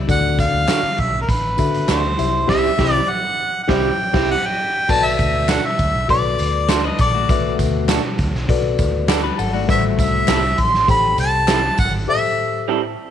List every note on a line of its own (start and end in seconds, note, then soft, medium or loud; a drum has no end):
0.07 0.47 D2 loud
0.07 0.95 D3 medium
0.07 0.78 D4 medium
0.07 0.79 F#4 medium
0.07 0.79 A4 medium
0.07 0.79 D5 medium
0.07 0.37 F#5 loud
0.07 kick loud
0.07 closed hi-hat medium
0.07 tambourine medium
0.39 1.01 F5 medium
0.39 kick medium
0.39 closed hi-hat medium
0.39 tambourine medium
0.53 0.66 D2 medium
0.68 0.80 F#3 medium
0.68 0.80 A3 medium
0.68 0.80 D4 medium
0.68 0.80 F#4 medium
0.68 snare loud
0.68 clap loud
0.68 closed hi-hat medium
0.68 tambourine medium
0.83 muted fingered electric bass stroke soft
0.98 1.24 B1 medium
0.98 1.21 E5 medium
0.98 kick medium
0.98 closed hi-hat medium
1.21 1.31 A#4 medium
1.29 1.54 A1 medium
1.29 1.89 B4 medium
1.29 kick medium
1.29 closed hi-hat medium
1.58 1.84 D3 medium
1.58 2.11 D4 medium
1.58 2.11 F#4 medium
1.58 2.11 A4 medium
1.58 2.12 E5 medium
1.58 kick medium
1.58 closed hi-hat medium
1.58 tambourine soft
1.74 closed hi-hat soft
1.88 2.14 D2 loud
1.88 2.00 F#3 medium
1.88 2.00 A3 medium
1.88 2.00 D4 medium
1.88 2.01 F#4 medium
1.88 2.45 C5 medium
1.88 snare medium
1.88 clap medium
1.88 closed hi-hat medium
1.88 tambourine loud
2.18 2.44 C2 medium
2.18 2.47 C3 medium
2.18 2.46 E4 medium
2.18 2.46 G4 medium
2.18 2.47 C5 medium
2.18 2.47 E5 medium
2.18 closed hi-hat medium
2.18 tambourine medium
2.47 2.69 C2 loud
2.47 2.69 C3 medium
2.47 2.69 G3 loud
2.47 2.70 C4 loud
2.47 2.68 E4 loud
2.47 2.70 E4 loud
2.47 2.69 G4 loud
2.47 2.70 G4 loud
2.47 2.69 C5 loud
2.47 2.69 E5 medium
2.47 2.92 E5 loud
2.47 kick loud
2.47 snare medium
2.47 crash medium
2.78 2.99 C2 medium
2.78 2.99 C3 medium
2.78 2.99 G3 medium
2.78 2.99 C4 loud
2.78 2.99 E4 medium
2.78 3.00 E4 medium
2.78 2.99 G4 medium
2.78 3.00 G4 medium
2.78 2.99 C5 medium
2.78 2.99 E5 medium
2.78 kick loud
2.78 snare loud
2.92 3.11 D5 loud
3.10 3.62 F#5 loud
3.63 3.71 F#5 medium
3.68 3.89 C2 medium
3.68 3.89 G3 medium
3.68 3.89 C4 medium
3.68 3.89 E4 loud
3.68 3.90 E4 medium
3.68 3.89 G4 loud
3.68 3.90 G4 medium
3.68 3.89 C5 loud
3.68 3.90 E5 loud
3.68 4.29 G5 medium
3.68 kick medium
3.68 snare loud
4.13 4.35 C2 medium
4.13 4.34 G3 medium
4.13 4.34 C4 medium
4.13 4.34 E4 medium
4.13 4.35 E4 medium
4.13 4.34 G4 medium
4.13 4.35 G4 medium
4.13 4.35 C5 medium
4.13 4.35 E5 medium
4.13 kick loud
4.13 snare loud
4.13 crash medium
4.31 4.47 F#5 loud
4.46 4.92 G5 loud
4.88 5.15 B1 loud
4.88 5.75 B2 medium
4.88 5.59 F#4 medium
4.88 5.59 A4 medium
4.88 5.59 B4 medium
4.88 5.60 D5 medium
4.88 5.07 A5 loud
4.88 kick loud
4.88 crash medium
4.88 tambourine medium
5.05 5.52 E5 loud
5.19 5.57 D2 medium
5.19 kick medium
5.19 closed hi-hat medium
5.19 tambourine medium
5.48 5.60 A3 medium
5.48 5.60 D4 medium
5.48 5.60 F#4 medium
5.48 5.61 A4 medium
5.48 5.67 F#5 medium
5.48 snare loud
5.48 clap loud
5.48 closed hi-hat medium
5.48 tambourine loud
5.65 6.09 E5 loud
5.79 5.92 D2 loud
5.79 kick medium
5.79 closed hi-hat medium
5.79 tambourine soft
5.94 6.07 B1 medium
6.08 6.34 B1 loud
6.08 6.79 F#4 medium
6.08 6.79 A4 medium
6.08 6.79 B4 medium
6.08 6.72 D5 medium
6.08 6.80 D5 medium
6.08 kick medium
6.08 closed hi-hat medium
6.39 6.90 D2 medium
6.39 closed hi-hat medium
6.39 tambourine medium
6.68 6.80 A3 medium
6.68 6.81 D4 medium
6.68 6.84 F#4 medium
6.68 6.81 F#4 medium
6.68 6.81 A4 medium
6.68 6.87 C5 medium
6.68 6.83 D5 medium
6.68 snare loud
6.68 clap medium
6.68 closed hi-hat medium
6.68 tambourine medium
6.84 6.99 D4 medium
6.84 6.98 B4 medium
6.84 7.00 D#5 medium
6.99 7.25 A#1 medium
6.99 7.14 A4 medium
6.99 7.56 D5 medium
6.99 kick loud
6.99 closed hi-hat medium
6.99 tambourine medium
7.14 8.00 A3 medium
7.14 8.00 F#4 medium
7.29 7.55 B1 loud
7.29 8.15 B2 medium
7.29 7.99 F#4 medium
7.29 7.99 A4 medium
7.29 8.00 B4 medium
7.29 8.00 E5 medium
7.29 kick loud
7.29 closed hi-hat medium
7.29 tambourine medium
7.59 7.97 D2 medium
7.59 kick medium
7.59 closed hi-hat medium
7.59 tambourine medium
7.88 8.00 A3 medium
7.88 8.01 D4 medium
7.88 8.01 F#4 medium
7.88 8.01 A4 medium
7.88 snare loud
7.88 clap loud
7.88 closed hi-hat loud
7.88 tambourine loud
8.19 8.32 D2 loud
8.19 kick medium
8.19 snare soft
8.19 closed hi-hat medium
8.34 8.47 B1 medium
8.34 snare soft
8.49 8.74 B1 medium
8.49 9.19 F#4 medium
8.49 9.19 A4 medium
8.49 9.19 B4 medium
8.49 9.09 D5 loud
8.49 kick medium
8.49 closed hi-hat medium
8.79 9.30 D2 medium
8.79 kick medium
8.79 closed hi-hat medium
8.79 tambourine medium
9.08 9.20 A3 medium
9.08 9.20 D4 medium
9.08 9.21 F#4 medium
9.08 9.24 F#4 medium
9.08 9.21 A4 medium
9.08 9.23 D5 medium
9.08 9.22 B5 medium
9.08 9.23 D6 medium
9.08 snare loud
9.08 clap loud
9.08 closed hi-hat medium
9.08 tambourine medium
9.24 9.39 D4 medium
9.24 9.38 B4 medium
9.24 9.38 B5 medium
9.38 9.64 G#1 medium
9.38 9.53 A4 medium
9.38 9.52 F#5 medium
9.38 9.53 A5 medium
9.38 open hi-hat medium
9.38 tambourine medium
9.53 10.40 A3 medium
9.53 10.40 F#4 medium
9.53 9.82 D5 medium
9.53 9.82 F#5 medium
9.67 9.94 A1 loud
9.67 10.54 A2 medium
9.67 10.38 G3 medium
9.67 10.38 A4 medium
9.67 9.75 B4 medium
9.67 10.39 E5 medium
9.67 9.83 E5 loud
9.67 kick loud
9.67 closed hi-hat medium
9.67 tambourine medium
9.75 10.42 C5 medium
9.99 10.24 C2 medium
9.99 10.62 E5 medium
9.99 kick medium
9.99 closed hi-hat medium
9.99 tambourine medium
10.28 10.54 C2 medium
10.28 10.40 G3 medium
10.28 10.40 C4 medium
10.28 10.40 E4 medium
10.28 10.40 A4 medium
10.28 snare loud
10.28 clap loud
10.28 closed hi-hat medium
10.28 tambourine medium
10.58 10.84 A1 loud
10.58 10.90 C6 loud
10.58 kick medium
10.58 closed hi-hat medium
10.74 snare soft
10.88 11.14 A1 medium
10.88 11.58 G4 medium
10.88 11.58 A4 medium
10.88 11.59 C5 medium
10.88 11.59 G5 medium
10.88 11.17 B5 loud
10.88 kick medium
10.88 closed hi-hat medium
10.88 tambourine soft
11.18 11.69 C2 medium
11.18 11.75 A5 loud
11.18 closed hi-hat medium
11.18 tambourine medium
11.48 11.60 G3 medium
11.48 11.60 C4 medium
11.48 11.60 E4 medium
11.48 11.60 A4 medium
11.48 snare loud
11.48 clap loud
11.48 closed hi-hat medium
11.48 tambourine loud
11.78 12.04 G#1 medium
11.78 11.93 F#5 medium
11.78 kick loud
11.78 open hi-hat medium
11.78 tambourine medium
12.08 12.94 A2 medium
12.08 12.78 G4 medium
12.08 12.78 A4 medium
12.08 12.78 C5 medium
12.08 12.79 E5 medium
12.08 12.65 E5 loud
12.68 12.79 G3 medium
12.68 12.80 C4 medium
12.68 12.80 E4 medium
12.68 12.80 A4 loud